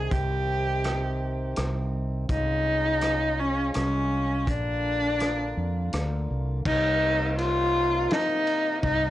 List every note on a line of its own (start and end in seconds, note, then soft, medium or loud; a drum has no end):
0.00 2.25 C3 medium
0.00 2.26 D#3 medium
0.00 0.13 G#4 medium
0.09 1.53 C2 medium
0.09 2.26 C4 medium
0.09 1.57 G4 medium
0.09 kick medium
0.09 closed hi-hat soft
0.84 cross-stick medium
0.84 closed hi-hat soft
1.56 2.26 C2 medium
1.56 cross-stick medium
1.56 closed hi-hat soft
2.27 3.71 C2 medium
2.27 4.45 G#3 medium
2.27 4.45 C#4 medium
2.27 3.41 D#4 loud
2.27 6.60 F4 medium
2.27 kick medium
2.27 closed hi-hat soft
3.01 cross-stick medium
3.01 closed hi-hat soft
3.39 3.74 C#4 medium
3.74 4.47 C2 medium
3.74 4.50 C#4 medium
3.74 cross-stick medium
3.74 closed hi-hat soft
4.47 5.52 A#1 medium
4.47 6.63 D3 medium
4.47 6.63 A#3 medium
4.47 5.94 D4 medium
4.47 kick medium
4.47 closed hi-hat soft
5.20 cross-stick medium
5.20 closed hi-hat soft
5.57 5.89 F2 medium
5.93 6.26 D2 medium
5.93 cross-stick medium
5.93 closed hi-hat soft
6.30 6.62 C2 medium
6.65 8.07 C2 medium
6.65 9.10 C3 medium
6.65 9.10 A#3 medium
6.65 7.35 D#4 loud
6.65 9.10 D#4 medium
6.65 kick medium
6.65 crash medium
7.38 8.13 F4 loud
7.38 ride soft
8.11 8.83 D#4 loud
8.11 snare medium
8.11 ride soft
8.47 ride soft
8.83 9.10 C2 medium
8.83 9.10 D#4 loud
8.83 kick medium
8.83 ride medium